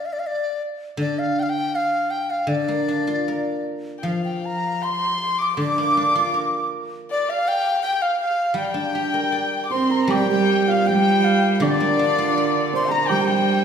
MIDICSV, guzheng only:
0, 0, Header, 1, 2, 480
1, 0, Start_track
1, 0, Tempo, 746269
1, 645, Time_signature, 2, 2, 24, 8
1, 1608, Tempo, 769231
1, 4008, Tempo, 750000
1, 8679, End_track
2, 0, Start_track
2, 0, Title_t, "Guzheng"
2, 0, Program_c, 0, 107
2, 0, Note_on_c, 0, 50, 41
2, 161, Note_off_c, 0, 50, 0
2, 626, Note_on_c, 0, 50, 52
2, 1580, Note_off_c, 0, 50, 0
2, 1588, Note_on_c, 0, 50, 50
2, 1723, Note_on_c, 0, 58, 39
2, 1847, Note_on_c, 0, 62, 41
2, 1966, Note_on_c, 0, 65, 39
2, 2094, Note_on_c, 0, 70, 34
2, 2563, Note_on_c, 0, 53, 49
2, 2695, Note_off_c, 0, 58, 0
2, 2819, Note_off_c, 0, 62, 0
2, 2938, Note_off_c, 0, 65, 0
2, 3049, Note_off_c, 0, 50, 0
2, 3061, Note_off_c, 0, 70, 0
2, 3524, Note_on_c, 0, 50, 51
2, 3654, Note_on_c, 0, 58, 40
2, 3774, Note_on_c, 0, 62, 46
2, 3888, Note_on_c, 0, 65, 45
2, 4000, Note_off_c, 0, 53, 0
2, 4004, Note_on_c, 0, 70, 36
2, 4603, Note_off_c, 0, 58, 0
2, 4721, Note_off_c, 0, 62, 0
2, 4837, Note_off_c, 0, 65, 0
2, 4950, Note_off_c, 0, 50, 0
2, 4953, Note_off_c, 0, 70, 0
2, 5411, Note_on_c, 0, 55, 50
2, 5541, Note_on_c, 0, 62, 41
2, 5674, Note_on_c, 0, 67, 42
2, 5795, Note_on_c, 0, 70, 38
2, 5912, Note_on_c, 0, 74, 33
2, 6387, Note_off_c, 0, 55, 0
2, 6394, Note_on_c, 0, 55, 52
2, 6528, Note_off_c, 0, 62, 0
2, 6658, Note_off_c, 0, 67, 0
2, 6779, Note_off_c, 0, 70, 0
2, 6898, Note_off_c, 0, 74, 0
2, 7370, Note_on_c, 0, 50, 57
2, 7500, Note_on_c, 0, 58, 42
2, 7622, Note_on_c, 0, 62, 45
2, 7744, Note_on_c, 0, 65, 47
2, 7851, Note_off_c, 0, 55, 0
2, 7867, Note_on_c, 0, 70, 40
2, 8447, Note_off_c, 0, 58, 0
2, 8566, Note_off_c, 0, 62, 0
2, 8679, Note_off_c, 0, 50, 0
2, 8679, Note_off_c, 0, 65, 0
2, 8679, Note_off_c, 0, 70, 0
2, 8679, End_track
0, 0, End_of_file